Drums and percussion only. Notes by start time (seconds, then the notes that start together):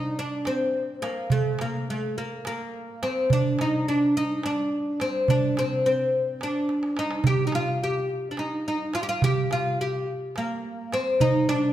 0.04 darbuka ka
0.45 darbuka tek
0.74 darbuka ka
1.03 darbuka tek
1.30 darbuka dum
1.59 darbuka tek
2.02 darbuka ka
2.45 darbuka tek
2.74 darbuka ka
3.03 darbuka tek
3.30 darbuka dum
3.59 darbuka tek
4.01 darbuka ka
4.43 darbuka tek
4.72 darbuka ka
5.00 darbuka tek
5.28 darbuka dum
5.57 darbuka tek
5.98 darbuka ka
6.41 darbuka tek
6.69 darbuka tek
6.83 darbuka ka
6.97 darbuka tek
7.11 darbuka ka
7.24 darbuka dum
7.52 darbuka tek
7.95 darbuka ka
8.37 darbuka tek
8.66 darbuka ka
8.94 darbuka tek
9.22 darbuka dum
9.51 darbuka tek
9.93 darbuka ka
10.36 darbuka tek
10.65 darbuka ka
10.92 darbuka tek
11.20 darbuka dum
11.49 darbuka tek